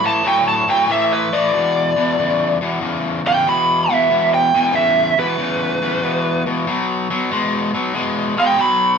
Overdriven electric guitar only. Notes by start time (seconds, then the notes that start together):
0.04 A2 E3
0.24 A2 F#3
0.68 A2 F#3
0.88 A2 E3
1.33 A2 E3
1.53 E2 B2
1.96 E2 B2
2.18 E2 C#3
2.61 E2 B2
2.81 E2 C#3
3.25 E2 C#3
3.46 E2 B2
3.90 E2 B2
4.10 E2 B2
4.54 E2 B2
4.73 E2 C#3
5.18 E2 B2
5.38 E2 C#3
5.82 E2 C#3
6.02 E2 B2
6.46 E2 B2
6.67 B2 F#3
7.10 B2 F#3
7.31 B2 G#3
7.74 B2 F#3
7.94 B2 G#3
8.37 B2 G#3
8.57 B2 F#3